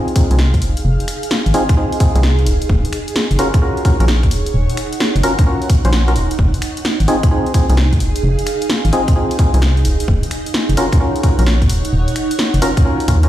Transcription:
Already playing: C4 D#4 F4 G#4 F5
0.08 closed hi-hat
0.16 C4 D#4 F4 G#4, kick, open hi-hat
0.31 C2 C4 D#4 F4 G#4, closed hi-hat
0.39 snare
0.54 kick, closed hi-hat
0.62 F1, open hi-hat
0.77 closed hi-hat
0.85 F1
1.00 closed hi-hat
1.08 finger snap, open hi-hat
1.23 closed hi-hat
1.31 snare
1.46 G#1, closed hi-hat
1.54 C4 D#4 F4 G#4, open hi-hat
1.69 finger snap, kick, closed hi-hat
1.77 C4 D#4 F4 G#4
1.92 open hi-hat
2.00 C4 D#4 F4 G#4, kick, open hi-hat
2.15 C2 C4 D#4 F4 G#4, closed hi-hat
2.23 snare
2.39 closed hi-hat
2.46 D#1, open hi-hat
2.62 closed hi-hat
2.69 D#1, kick
2.85 closed hi-hat
2.93 C#5, finger snap, open hi-hat
3.08 closed hi-hat
3.16 snare
3.31 F#1, closed hi-hat
3.39 C#4 F4 F#4 A#4, open hi-hat
3.54 finger snap, kick, closed hi-hat
3.62 C#4 F4 F#4 A#4
3.77 closed hi-hat
3.85 C#4 F4 F#4 A#4, kick, open hi-hat
4.00 A#1 C#4 F4 F#4 A#4, closed hi-hat
4.04 F#5, snare
4.23 kick, closed hi-hat
4.31 D#1, open hi-hat
4.46 closed hi-hat
4.54 D#1
4.70 closed hi-hat
4.77 finger snap, open hi-hat
4.93 closed hi-hat
5.00 snare
5.16 F#1, closed hi-hat
5.23 C#4 F4 F#4 A#4, open hi-hat
5.39 finger snap, kick, closed hi-hat
5.47 C#4 F4 F#4 A#4
5.62 open hi-hat
5.70 kick, open hi-hat
5.85 A#1 C#4 F4 F#4 C5, closed hi-hat
5.93 snare
6.08 C#4 F4 F#4 A#4, closed hi-hat
6.16 D#1, open hi-hat
6.31 closed hi-hat
6.39 F1, kick
6.54 closed hi-hat
6.62 finger snap, open hi-hat
6.74 G#4, closed hi-hat
6.85 snare
7.00 G#1, closed hi-hat
7.08 C4 D#4 F4 G#4, open hi-hat
7.23 finger snap, kick, closed hi-hat
7.31 C4 D#4 F4 G#4
7.46 F5, closed hi-hat
7.54 C4 D#4 F4 G#4, kick, open hi-hat
7.70 C2 C4 D#4 F4 G#4, closed hi-hat
7.77 snare
7.93 kick, closed hi-hat
8.00 F1, open hi-hat
8.16 closed hi-hat
8.24 F1
8.39 closed hi-hat
8.47 finger snap, open hi-hat
8.62 closed hi-hat
8.70 snare
8.85 G#1, closed hi-hat
8.93 C4 D#4 F4 G#4, open hi-hat
9.08 finger snap, kick, closed hi-hat
9.16 C4 D#4 F4 G#4
9.31 open hi-hat
9.39 C4 D#4 F4 G#4, kick, open hi-hat
9.54 C2 C4 D#4 F4 G#4, closed hi-hat
9.62 snare
9.77 closed hi-hat
9.85 D#1, open hi-hat
10.00 closed hi-hat
10.08 D#1, kick
10.15 C#5
10.23 closed hi-hat
10.31 finger snap, open hi-hat
10.46 F#5, closed hi-hat
10.54 snare
10.69 F#1, closed hi-hat
10.77 C#4 F4 F#4 A#4, open hi-hat
10.93 finger snap, kick, closed hi-hat
11.00 C#4 F4 F#4 A#4
11.16 closed hi-hat
11.23 C#4 F4 F#4 A#4, kick, open hi-hat
11.39 A#1 C#4 F4 F#4 A#4, closed hi-hat
11.47 snare
11.62 kick, closed hi-hat
11.70 D#1, open hi-hat
11.85 closed hi-hat
11.93 D#1
12.08 closed hi-hat
12.16 finger snap, open hi-hat
12.31 closed hi-hat
12.39 snare
12.54 F#1, closed hi-hat
12.62 C#4 F4 F#4 A#4, open hi-hat
12.77 finger snap, kick, closed hi-hat
12.85 C#4 F4 F#4 A#4
13.00 open hi-hat
13.08 D#2 C#4 F4 F#4 A#4, kick, open hi-hat
13.23 C#4 F4 F#4 A#4, closed hi-hat

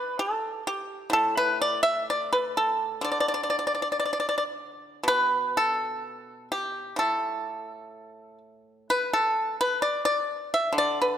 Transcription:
Already playing: E3 B4
0.19 A4
0.67 G4
1.10 A2 A4
1.37 B4
1.62 D5
1.83 E5
2.10 D5
2.33 B4
2.57 A4
3.01 D3 D5
3.12 D5
3.20 D5
3.28 D5
3.34 D5
3.43 D5
3.50 D5
3.59 D5
3.67 D5
3.75 D5
3.82 D5
3.92 D5
4.00 D5
4.05 D5
4.13 D5
4.20 D5
4.29 D5
4.38 D5
5.03 B2
5.08 B4
5.57 A4
6.52 G4
6.96 A2 A4
8.90 B4
9.13 A4
9.61 B4
9.82 D5
10.05 D5
10.54 E5
10.73 D3
10.78 D5
11.02 B4

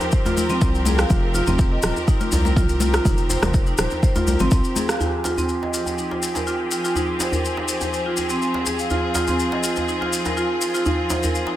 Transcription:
Already playing: F3 C4 G4 A#4
0.01 djembe tone, maracas
0.12 C5, kick, maracas
0.25 F4, djembe slap, high conga, djembe bass, maracas
0.37 high conga, djembe tone, maracas
0.49 C4, high conga, low conga, maracas
0.61 C2, kick, maracas
0.75 maracas
0.85 G#4, high conga, djembe tone, maracas
0.99 F5, cross-stick, maracas
1.10 F1 F4, kick, djembe tone, low conga, maracas
1.34 F4, djembe tone, maracas
1.47 F1 C4, high conga, djembe bass, low conga, maracas
1.59 kick, maracas
1.72 D#5
1.83 D#1 F4, cross-stick, low conga, maracas
1.96 djembe tone, maracas
2.08 D#4, kick, maracas
2.21 F4, high conga, maracas
2.32 C2, djembe slap, djembe bass, maracas
2.45 A#4, high conga, djembe tone, maracas
2.56 F4, kick, mid tom, maracas
2.69 maracas
2.80 F4, high conga, maracas
2.94 F4, cross-stick, djembe slap, maracas
3.05 F1 D#4, kick, mid tom, djembe tone, low conga, maracas
3.18 maracas
3.30 C5, djembe tone, maracas
3.42 F1 A#4, cross-stick, mid tom, djembe slap, high conga, low conga, djembe bass, maracas
3.54 kick, maracas
3.66 D#4, maracas
3.78 D#1 C5, cross-stick, low conga, maracas
3.91 djembe tone, maracas
4.03 C5, kick, maracas
4.15 F4, djembe slap, high conga, djembe bass, maracas
4.27 C2, djembe tone, high conga, maracas
4.39 G#1 C4, high conga, low conga, maracas
4.51 C2, kick, maracas
4.64 maracas
4.76 G#4, djembe tone, high conga, maracas
4.89 F5, cross-stick, maracas
5.00 F3 C4 F4 G4 G#4, djembe tone, djembe bass, maracas
5.24 F4, djembe slap, djembe tone, maracas
5.37 C4, djembe bass, maracas
5.49 maracas
5.62 D#5, djembe slap
5.74 F4, maracas
5.86 djembe tone, maracas
5.98 D#4, maracas
6.11 F4, djembe slap
6.23 maracas
6.35 A#4, djembe slap, djembe tone, maracas
6.47 F4, maracas
6.71 F4, maracas
6.84 F4, maracas
6.96 D#4, djembe tone, djembe bass, maracas
7.20 C5, djembe slap, djembe tone, maracas
7.32 A#4, djembe bass, maracas
7.45 maracas
7.57 D#4, djembe slap
7.68 C5, maracas
7.81 djembe tone, maracas
7.93 C5, maracas
8.06 F4
8.17 djembe tone, maracas
8.29 C4, maracas
8.42 C4, maracas
8.54 djembe slap
8.66 G#4, djembe tone, maracas
8.79 F5, maracas
8.90 F4, djembe tone, djembe bass, maracas
9.15 F4, djembe slap, djembe tone, maracas
9.27 C4, djembe bass, maracas
9.39 maracas
9.52 D#5, djembe slap
9.63 F4, maracas
9.76 djembe tone, maracas
9.88 D#4, maracas
10.01 F4, djembe slap
10.13 maracas
10.25 A#4, djembe slap, djembe tone, maracas
10.37 F4, maracas
10.61 F4, maracas
10.74 F4, maracas
10.85 D#4, djembe tone, djembe bass, maracas
11.10 C5, djembe slap, djembe tone, maracas
11.23 A#4, djembe bass, maracas
11.35 maracas
11.47 D#4, djembe slap

